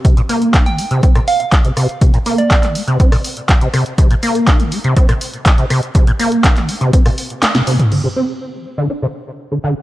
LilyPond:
<<
  \new Staff \with { instrumentName = "Synth bell" } { \time 4/4 \key c \dorian \tempo 4 = 122 r4 r16 g''8 r8. f''16 f''16 r4 | r8. d''16 d''16 r2 r8. | r1 | r1 |
r1 | }
  \new Staff \with { instrumentName = "Acid bass" } { \clef bass \time 4/4 \key c \dorian c16 bes,16 bes8 ees'16 d16 bes16 c16 c'16 bes,16 r8. c16 c16 r16 | c16 bes,16 bes8 ees'16 d16 bes16 c16 c'16 bes,16 r8. c16 c16 r16 | c16 bes,16 bes8 ees'16 d16 bes16 c16 c'16 bes,16 r8. c16 c16 r16 | c16 bes,16 bes8 ees'16 d16 bes16 c16 c'16 bes,16 r8. c16 c16 r16 |
d16 c16 c'8 f'16 ees16 c'16 d16 d'16 c16 r8. d16 d16 r16 | }
  \new DrumStaff \with { instrumentName = "Drums" } \drummode { \time 4/4 <hh bd>16 hh16 hho16 hh16 <hc hh bd>16 hh16 hho16 hh16 <hh bd>16 <hh ss>16 hho16 hh16 <hc hh bd>16 hh16 <hho ss>16 hh16 | <hh bd>16 hh16 hho16 hh16 <hc hh bd>16 <hc hh>16 hho16 hh16 <hh bd>16 <hho ss>16 hho16 hh16 <hc hh bd>16 hh16 <hho ss>16 hh16 | <hh bd>16 hh16 hho16 hh16 <hc hh bd>16 hh16 hho16 hh16 <hh bd>16 <hh ss>16 hho16 hh16 <hc hh bd>16 hh16 <hho ss>16 hh16 | <hh bd>16 hh16 hho16 hh16 <hc hh bd>16 <hc hh>16 hho16 hh16 <hh bd>16 <hho ss>16 hho16 hh16 <hc hh sn>16 <hh sn>16 hho16 <hh toml>16 |
cymc4 r4 r4 r4 | }
>>